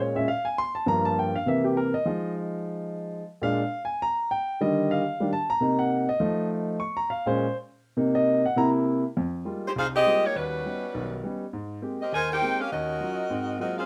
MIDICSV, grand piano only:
0, 0, Header, 1, 2, 480
1, 0, Start_track
1, 0, Key_signature, -5, "minor"
1, 0, Tempo, 296004
1, 1416, Time_signature, 4, 2, 24, 8
1, 14862, Key_signature, -4, "minor"
1, 22471, End_track
2, 0, Start_track
2, 0, Title_t, "Grand piano"
2, 0, Program_c, 0, 0
2, 0, Note_on_c, 0, 46, 51
2, 0, Note_on_c, 0, 56, 43
2, 0, Note_on_c, 0, 61, 55
2, 0, Note_on_c, 0, 73, 64
2, 223, Note_off_c, 0, 46, 0
2, 233, Note_off_c, 0, 56, 0
2, 241, Note_off_c, 0, 61, 0
2, 248, Note_on_c, 0, 46, 47
2, 258, Note_on_c, 0, 56, 38
2, 259, Note_on_c, 0, 76, 73
2, 264, Note_off_c, 0, 73, 0
2, 265, Note_on_c, 0, 61, 50
2, 427, Note_off_c, 0, 46, 0
2, 432, Note_off_c, 0, 56, 0
2, 436, Note_off_c, 0, 61, 0
2, 447, Note_off_c, 0, 76, 0
2, 455, Note_on_c, 0, 77, 83
2, 727, Note_on_c, 0, 80, 81
2, 736, Note_off_c, 0, 77, 0
2, 921, Note_off_c, 0, 80, 0
2, 947, Note_on_c, 0, 84, 106
2, 1216, Note_on_c, 0, 81, 77
2, 1222, Note_off_c, 0, 84, 0
2, 1398, Note_on_c, 0, 43, 54
2, 1405, Note_off_c, 0, 81, 0
2, 1414, Note_on_c, 0, 53, 45
2, 1425, Note_on_c, 0, 58, 58
2, 1431, Note_on_c, 0, 82, 90
2, 1705, Note_off_c, 0, 82, 0
2, 1707, Note_on_c, 0, 81, 86
2, 1892, Note_off_c, 0, 81, 0
2, 1928, Note_on_c, 0, 79, 74
2, 2138, Note_off_c, 0, 43, 0
2, 2147, Note_off_c, 0, 53, 0
2, 2153, Note_off_c, 0, 58, 0
2, 2194, Note_off_c, 0, 79, 0
2, 2198, Note_on_c, 0, 77, 79
2, 2368, Note_on_c, 0, 48, 54
2, 2377, Note_off_c, 0, 77, 0
2, 2382, Note_on_c, 0, 52, 53
2, 2392, Note_on_c, 0, 58, 54
2, 2402, Note_on_c, 0, 76, 76
2, 2667, Note_on_c, 0, 67, 60
2, 2671, Note_off_c, 0, 76, 0
2, 2852, Note_off_c, 0, 67, 0
2, 2871, Note_on_c, 0, 70, 80
2, 3104, Note_off_c, 0, 48, 0
2, 3112, Note_off_c, 0, 52, 0
2, 3117, Note_off_c, 0, 58, 0
2, 3146, Note_off_c, 0, 70, 0
2, 3147, Note_on_c, 0, 75, 80
2, 3335, Note_on_c, 0, 53, 54
2, 3348, Note_on_c, 0, 56, 44
2, 3356, Note_on_c, 0, 63, 61
2, 3772, Note_off_c, 0, 75, 0
2, 5195, Note_off_c, 0, 53, 0
2, 5202, Note_off_c, 0, 56, 0
2, 5206, Note_off_c, 0, 63, 0
2, 5539, Note_on_c, 0, 46, 53
2, 5553, Note_on_c, 0, 56, 52
2, 5561, Note_on_c, 0, 77, 88
2, 5562, Note_on_c, 0, 62, 58
2, 5837, Note_off_c, 0, 46, 0
2, 5844, Note_off_c, 0, 56, 0
2, 5849, Note_off_c, 0, 62, 0
2, 6181, Note_off_c, 0, 77, 0
2, 6241, Note_on_c, 0, 80, 79
2, 6514, Note_off_c, 0, 80, 0
2, 6524, Note_on_c, 0, 82, 106
2, 6966, Note_off_c, 0, 82, 0
2, 6990, Note_on_c, 0, 79, 87
2, 7439, Note_off_c, 0, 79, 0
2, 7468, Note_on_c, 0, 51, 56
2, 7473, Note_on_c, 0, 55, 51
2, 7479, Note_on_c, 0, 50, 57
2, 7482, Note_on_c, 0, 75, 91
2, 7963, Note_on_c, 0, 77, 78
2, 8103, Note_off_c, 0, 75, 0
2, 8109, Note_off_c, 0, 51, 0
2, 8112, Note_off_c, 0, 55, 0
2, 8115, Note_off_c, 0, 50, 0
2, 8437, Note_on_c, 0, 51, 47
2, 8438, Note_on_c, 0, 55, 43
2, 8443, Note_on_c, 0, 62, 50
2, 8583, Note_off_c, 0, 77, 0
2, 8608, Note_off_c, 0, 51, 0
2, 8608, Note_off_c, 0, 55, 0
2, 8611, Note_off_c, 0, 62, 0
2, 8639, Note_on_c, 0, 81, 85
2, 8914, Note_off_c, 0, 81, 0
2, 8917, Note_on_c, 0, 82, 96
2, 9090, Note_on_c, 0, 48, 53
2, 9094, Note_on_c, 0, 58, 48
2, 9105, Note_on_c, 0, 63, 59
2, 9363, Note_off_c, 0, 82, 0
2, 9385, Note_on_c, 0, 78, 84
2, 9829, Note_off_c, 0, 48, 0
2, 9831, Note_off_c, 0, 58, 0
2, 9836, Note_off_c, 0, 63, 0
2, 9836, Note_off_c, 0, 78, 0
2, 9874, Note_on_c, 0, 75, 92
2, 10055, Note_on_c, 0, 53, 52
2, 10058, Note_on_c, 0, 57, 55
2, 10067, Note_on_c, 0, 63, 60
2, 10498, Note_off_c, 0, 75, 0
2, 10972, Note_off_c, 0, 53, 0
2, 10973, Note_off_c, 0, 57, 0
2, 10978, Note_off_c, 0, 63, 0
2, 11022, Note_on_c, 0, 85, 87
2, 11297, Note_on_c, 0, 82, 92
2, 11304, Note_off_c, 0, 85, 0
2, 11490, Note_off_c, 0, 82, 0
2, 11515, Note_on_c, 0, 77, 73
2, 11774, Note_on_c, 0, 46, 54
2, 11775, Note_on_c, 0, 56, 49
2, 11791, Note_off_c, 0, 77, 0
2, 11791, Note_on_c, 0, 72, 75
2, 11794, Note_on_c, 0, 61, 64
2, 12074, Note_off_c, 0, 46, 0
2, 12075, Note_off_c, 0, 56, 0
2, 12085, Note_off_c, 0, 61, 0
2, 12238, Note_off_c, 0, 72, 0
2, 12919, Note_on_c, 0, 48, 56
2, 12928, Note_on_c, 0, 58, 56
2, 12932, Note_on_c, 0, 63, 62
2, 13216, Note_on_c, 0, 75, 93
2, 13661, Note_off_c, 0, 48, 0
2, 13665, Note_off_c, 0, 58, 0
2, 13668, Note_off_c, 0, 63, 0
2, 13669, Note_off_c, 0, 75, 0
2, 13711, Note_on_c, 0, 78, 82
2, 13883, Note_on_c, 0, 48, 56
2, 13893, Note_on_c, 0, 58, 51
2, 13896, Note_off_c, 0, 78, 0
2, 13900, Note_on_c, 0, 64, 64
2, 13911, Note_on_c, 0, 82, 88
2, 14082, Note_off_c, 0, 82, 0
2, 14622, Note_off_c, 0, 48, 0
2, 14628, Note_off_c, 0, 58, 0
2, 14631, Note_off_c, 0, 64, 0
2, 14868, Note_on_c, 0, 41, 74
2, 15275, Note_off_c, 0, 41, 0
2, 15328, Note_on_c, 0, 55, 55
2, 15334, Note_on_c, 0, 56, 43
2, 15339, Note_on_c, 0, 58, 48
2, 15340, Note_on_c, 0, 63, 47
2, 15342, Note_on_c, 0, 65, 54
2, 15643, Note_off_c, 0, 55, 0
2, 15646, Note_off_c, 0, 56, 0
2, 15648, Note_off_c, 0, 58, 0
2, 15648, Note_off_c, 0, 63, 0
2, 15649, Note_off_c, 0, 65, 0
2, 15822, Note_on_c, 0, 36, 75
2, 16232, Note_off_c, 0, 36, 0
2, 16311, Note_on_c, 0, 55, 57
2, 16315, Note_on_c, 0, 56, 56
2, 16318, Note_on_c, 0, 58, 55
2, 16322, Note_on_c, 0, 65, 61
2, 16328, Note_on_c, 0, 63, 50
2, 16614, Note_off_c, 0, 55, 0
2, 16616, Note_off_c, 0, 56, 0
2, 16617, Note_off_c, 0, 58, 0
2, 16619, Note_off_c, 0, 65, 0
2, 16622, Note_off_c, 0, 63, 0
2, 16794, Note_on_c, 0, 39, 68
2, 17198, Note_off_c, 0, 39, 0
2, 17259, Note_on_c, 0, 55, 49
2, 17267, Note_on_c, 0, 59, 47
2, 17275, Note_on_c, 0, 61, 48
2, 17280, Note_on_c, 0, 63, 58
2, 17568, Note_off_c, 0, 55, 0
2, 17571, Note_off_c, 0, 59, 0
2, 17575, Note_off_c, 0, 61, 0
2, 17578, Note_off_c, 0, 63, 0
2, 17745, Note_on_c, 0, 35, 72
2, 17746, Note_on_c, 0, 51, 74
2, 18153, Note_off_c, 0, 35, 0
2, 18153, Note_off_c, 0, 51, 0
2, 18215, Note_on_c, 0, 59, 59
2, 18222, Note_on_c, 0, 55, 64
2, 18229, Note_on_c, 0, 63, 64
2, 18230, Note_on_c, 0, 61, 57
2, 18525, Note_off_c, 0, 59, 0
2, 18528, Note_off_c, 0, 55, 0
2, 18532, Note_off_c, 0, 61, 0
2, 18532, Note_off_c, 0, 63, 0
2, 18700, Note_on_c, 0, 44, 77
2, 19109, Note_off_c, 0, 44, 0
2, 19161, Note_on_c, 0, 56, 55
2, 19168, Note_on_c, 0, 58, 49
2, 19170, Note_on_c, 0, 60, 52
2, 19178, Note_on_c, 0, 67, 57
2, 19478, Note_off_c, 0, 56, 0
2, 19481, Note_off_c, 0, 58, 0
2, 19482, Note_off_c, 0, 60, 0
2, 19486, Note_off_c, 0, 67, 0
2, 19662, Note_on_c, 0, 39, 74
2, 20070, Note_off_c, 0, 39, 0
2, 20133, Note_on_c, 0, 58, 54
2, 20134, Note_on_c, 0, 56, 55
2, 20136, Note_on_c, 0, 60, 50
2, 20143, Note_on_c, 0, 67, 70
2, 20443, Note_off_c, 0, 58, 0
2, 20444, Note_off_c, 0, 56, 0
2, 20444, Note_off_c, 0, 60, 0
2, 20448, Note_off_c, 0, 67, 0
2, 20629, Note_on_c, 0, 39, 74
2, 21033, Note_off_c, 0, 39, 0
2, 21089, Note_on_c, 0, 54, 53
2, 21097, Note_on_c, 0, 63, 46
2, 21099, Note_on_c, 0, 61, 49
2, 21102, Note_on_c, 0, 65, 58
2, 21401, Note_off_c, 0, 54, 0
2, 21404, Note_off_c, 0, 63, 0
2, 21405, Note_off_c, 0, 61, 0
2, 21407, Note_off_c, 0, 65, 0
2, 21567, Note_on_c, 0, 60, 66
2, 21570, Note_on_c, 0, 44, 75
2, 21981, Note_off_c, 0, 60, 0
2, 21983, Note_off_c, 0, 44, 0
2, 22048, Note_on_c, 0, 54, 58
2, 22050, Note_on_c, 0, 56, 55
2, 22052, Note_on_c, 0, 58, 55
2, 22054, Note_on_c, 0, 60, 52
2, 22059, Note_on_c, 0, 65, 64
2, 22359, Note_off_c, 0, 54, 0
2, 22360, Note_off_c, 0, 56, 0
2, 22362, Note_off_c, 0, 58, 0
2, 22363, Note_off_c, 0, 60, 0
2, 22365, Note_off_c, 0, 65, 0
2, 22471, End_track
0, 0, End_of_file